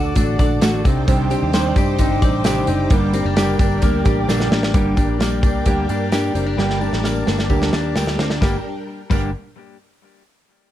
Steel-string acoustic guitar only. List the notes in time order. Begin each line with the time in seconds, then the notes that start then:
Already playing: D4 F#4 A4
0.15 A3 D4 F#4 A4
0.38 D4 F#4 A4
0.61 D3 A3 D4 F#4 A4
0.85 G3 C4 D4 G4
1.07 C3 D#3 G3 C4 D4 G4
1.30 G3 C4 D4 G4
1.53 C3 D#3 G3 C4 D4 G4
1.76 G3 C4 D4 G4
1.99 G3 C4 D4 G4
2.23 G3 C4 D4 G4
2.45 C3 D#3 G3 C4 D4 G4
2.67 G3 C4 D4 G4
2.90 G2 D3 G3 A#3 D4 G4
3.14 G3 A#3 D4 G4
3.36 G2 D3 G3 A#3 D4 G4
3.59 G3 A#3 D4 G4
3.82 G3 A#3 D4 G4
4.05 G3 A#3 D4 G4
4.28 G2 D3 G3 A#3 D4 G4
4.50 G3 A#3 D4 G4
4.74 G2 D3 G3 A#3 D4 G4
4.96 G3 A#3 D4 G4
5.19 G3 A#3 D4 G4
5.43 G3 A#3 D4 G4
5.66 G2 D3 G3 A#3 D4 G4
5.89 G3 A#3 D4 G4
6.12 G3 A#3 D4 G4
6.34 G3 A#3 D4 G4
6.57 G2 D3 G3 A#3 D4 G4
6.81 G3 A#3 D4 G4
7.03 G3 A#3 D4 G4
7.26 G3 A#3 D4 G4
7.49 G2 D3 G3 A#3 D4 G4
7.73 G3 A#3 D4 G4
7.95 G3 A#3 D4 G4
8.19 G3 A#3 D4 G4
8.41 G2 D3 G3 A#3 D4 G4
9.11 G2 D3 G3 A#3 D4 G4